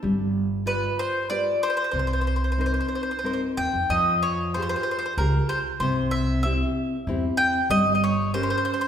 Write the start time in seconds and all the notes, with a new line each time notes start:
0.03 G1 G3
0.66 F4 G4 B4 D5
0.99 C5
1.30 F4 G4 B4 D5
1.63 C5
1.70 C5
1.77 C5
1.84 C5
1.91 C2 C3 C5
1.99 C5
2.07 C5
2.13 C5
2.21 C5
2.27 C5
2.36 C5
2.44 C5
2.52 C5
2.58 C4 D#4 A#4 C5
2.66 C5
2.74 C5
2.81 C5
2.88 C5
2.95 C5
3.03 C5
3.11 C5
3.19 C5
3.24 C4 D#4 A#4 C5
3.33 C5
3.57 D#2 G5
3.73 F2
3.90 F2 F3 D#5
4.23 C#5
4.54 F4 G4 G#4 C5
4.62 C5
4.69 C5
4.76 C5
4.83 C5
4.91 C5
4.99 C5
5.06 C5
5.17 C#2 F4 G4 G#4 A#4
5.49 C5
5.80 C2 C3 C5
6.11 E5
6.43 C4 E4 G4 E5
7.07 E2 C4 E4 G4
7.37 G5
7.70 G1 G3 D#5
7.95 D#5
8.04 C#5
8.34 C#4 G4 A#4 C5
8.43 C5
8.50 C5
8.58 C5
8.65 C5
8.74 C5
8.81 C5